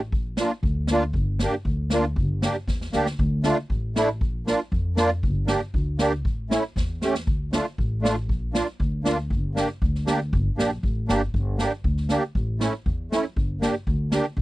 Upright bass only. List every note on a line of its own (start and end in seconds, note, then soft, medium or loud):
0.00 0.13 A1 medium
0.13 0.44 A#1 medium
0.63 1.15 D2 medium
1.13 1.45 G1 medium
1.65 2.18 D2 medium
2.16 2.47 G1 medium
2.67 2.91 E2 medium
2.94 3.17 D2 medium
3.19 3.50 D2 loud
3.70 4.21 A1 medium
4.21 4.52 A#1 medium
4.72 5.25 F2 medium
5.23 5.54 G1 medium
5.74 6.24 D2 medium
6.24 6.55 A1 loud
6.76 7.27 E2 medium
7.27 7.58 D2 medium
7.78 8.29 A1 medium
8.29 8.59 A#1 medium
8.80 9.32 D2 medium
9.30 9.61 G1 medium
9.82 10.34 D2 medium
10.33 10.48 G1 loud
10.58 10.81 A#1 medium
10.83 11.06 A1 medium
11.10 11.32 G1 medium
11.34 11.64 G1 medium
11.84 12.15 D2 medium
12.35 12.66 A1 medium
12.86 13.17 E2 medium
13.36 13.67 G1 medium
13.87 14.18 D2 medium
14.37 14.42 A#1 medium